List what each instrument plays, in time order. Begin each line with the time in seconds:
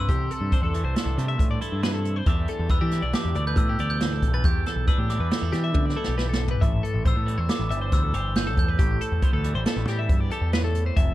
Already playing: clean electric guitar E3 D4 E4
0.00 glockenspiel E6
0.09 picked electric bass C2, clean electric guitar C3 G4, kick, closed hi-hat
0.31 clean electric guitar A4, closed hi-hat
0.41 picked electric bass G2
0.52 clean electric guitar D4 C5, kick, closed hi-hat
0.62 picked electric bass E2, clean electric guitar A4
0.74 clean electric guitar E3 A3, closed hi-hat
0.84 picked electric bass C2, clean electric guitar C5
0.95 clean electric guitar D4 A4, snare, closed hi-hat
1.06 picked electric bass C2
1.18 clean electric guitar G2 A3 G4, picked electric bass C3, snare, closed hi-hat
1.28 clean electric guitar E5
1.39 picked electric bass A2, kick, closed hi-hat
1.51 clean electric guitar D5
1.61 clean electric guitar E4 A4, closed hi-hat
1.72 picked electric bass G2
1.83 clean electric guitar C3 B4, snare, closed hi-hat
1.94 clean electric guitar A4
2.05 closed hi-hat
2.16 clean electric guitar C5
2.26 picked electric bass E2, clean electric guitar E2 E3 G3 D4 G4 E5, kick, closed hi-hat
2.48 clean electric guitar A4, closed hi-hat
2.59 picked electric bass E2
2.69 clean electric guitar B3 B4, glockenspiel E6, kick, closed hi-hat
2.81 picked electric bass E3, clean electric guitar D4 G4
2.91 clean electric guitar E3 G3, snare, closed hi-hat
3.02 picked electric bass B1, clean electric guitar D5
3.13 clean electric guitar D4 G4, glockenspiel D6, snare, closed hi-hat
3.25 picked electric bass E2
3.35 picked electric bass D2, clean electric guitar B2 G3 D5, closed hi-hat
3.47 clean electric guitar B4, glockenspiel G6
3.57 picked electric bass A2, glockenspiel E6, kick, closed hi-hat
3.69 clean electric guitar G4
3.78 picked electric bass D2, clean electric guitar G4 D5, closed hi-hat
3.90 glockenspiel G6
4.00 clean electric guitar E2 B4, snare, closed hi-hat
4.13 clean electric guitar A4
4.22 picked electric bass B1, kick, closed hi-hat
4.34 clean electric guitar B4, glockenspiel A6
4.44 picked electric bass E2, clean electric guitar E2 G4, glockenspiel G6, kick, closed hi-hat
4.66 clean electric guitar A4, snare, closed hi-hat
4.76 picked electric bass B1
4.87 clean electric guitar D4 B4, glockenspiel E6, kick, closed hi-hat
4.98 picked electric bass A2, clean electric guitar G4
5.09 clean electric guitar E3 G3, glockenspiel D6, snare, closed hi-hat
5.20 picked electric bass E2, clean electric guitar B4
5.31 clean electric guitar B3 A4, snare, closed hi-hat
5.42 picked electric bass E2, clean electric guitar D4
5.53 clean electric guitar B2 G3 G4, picked electric bass E3, snare, closed hi-hat
5.64 clean electric guitar E5
5.74 picked electric bass D3, kick, high tom
5.86 clean electric guitar D5
5.90 snare
5.96 clean electric guitar E4 A4
6.04 picked electric bass B1, clean electric guitar G4, snare
6.18 clean electric guitar E2 B4, snare
6.29 clean electric guitar A4
6.33 snare
6.48 clean electric guitar B4, floor tom
6.61 picked electric bass A1, clean electric guitar A2 E5, kick, closed hi-hat
6.83 clean electric guitar A4, closed hi-hat
6.94 picked electric bass A1
7.05 clean electric guitar B3 C5, glockenspiel E6, kick, closed hi-hat
7.16 picked electric bass A2, clean electric guitar A4
7.26 clean electric guitar E3 G3, closed hi-hat
7.38 picked electric bass E2, clean electric guitar C5
7.49 clean electric guitar B3 A4, glockenspiel D6, snare, closed hi-hat
7.59 picked electric bass A1
7.70 picked electric bass G1, clean electric guitar E2 G3 E5, closed hi-hat
7.81 clean electric guitar C5
7.92 picked electric bass D2, glockenspiel E6, kick, snare, closed hi-hat
8.04 clean electric guitar A4
8.14 picked electric bass G1, clean electric guitar G4 C5, closed hi-hat
8.35 clean electric guitar A2 B4, glockenspiel G6, snare, closed hi-hat
8.47 clean electric guitar A4
8.57 picked electric bass E2, glockenspiel G6, kick, closed hi-hat
8.68 clean electric guitar B4
8.79 picked electric bass A1, clean electric guitar A2 G4, kick, closed hi-hat
9.01 clean electric guitar A4, closed hi-hat
9.12 picked electric bass E2
9.22 clean electric guitar B3 C5, kick, closed hi-hat
9.33 picked electric bass D2, clean electric guitar A4
9.44 clean electric guitar E3 G3, closed hi-hat
9.55 picked electric bass A1, clean electric guitar C5
9.66 clean electric guitar B3 A4, snare, closed hi-hat
9.76 picked electric bass A1
9.87 clean electric guitar E2 G3 G4, picked electric bass A2, snare, closed hi-hat
9.99 clean electric guitar E5
10.09 picked electric bass G2, kick, closed hi-hat
10.20 clean electric guitar D5
10.31 clean electric guitar G4 A4, closed hi-hat
10.41 picked electric bass E2
10.53 clean electric guitar A2 B4, snare, closed hi-hat
10.64 clean electric guitar A4
10.75 closed hi-hat
10.86 clean electric guitar C5
10.96 picked electric bass F1, clean electric guitar F2 E5, kick, closed hi-hat